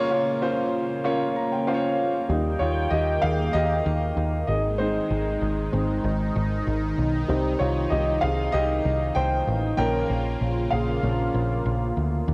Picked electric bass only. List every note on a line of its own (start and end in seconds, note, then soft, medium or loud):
2.30 2.55 D#2 medium
2.60 2.86 D#2 medium
2.91 3.17 D#2 loud
3.23 3.49 D#2 loud
3.54 3.80 D#2 medium
3.86 4.11 D#2 loud
4.17 4.42 D#2 loud
4.48 4.99 G#1 medium
5.11 5.36 G#1 medium
5.41 5.67 G#1 loud
5.73 5.98 G#1 loud
6.04 6.30 G#1 loud
6.36 6.61 G#1 loud
6.67 6.92 G#1 loud
6.98 7.23 B1 medium
7.29 7.54 C2 loud
7.60 7.86 C2 medium
7.92 8.17 C2 loud
8.23 8.48 C2 medium
8.54 8.79 C2 loud
8.85 9.10 C2 loud
9.16 9.41 C2 loud
9.47 9.73 A1 medium
9.78 10.04 A#1 medium
10.10 10.35 A#1 medium
10.41 10.66 A#1 medium
10.72 10.98 A#1 loud
11.03 11.28 A#1 loud
11.34 11.60 A#1 medium
11.65 11.91 A#1 loud
11.97 12.22 D2 medium
12.28 12.34 D#2 medium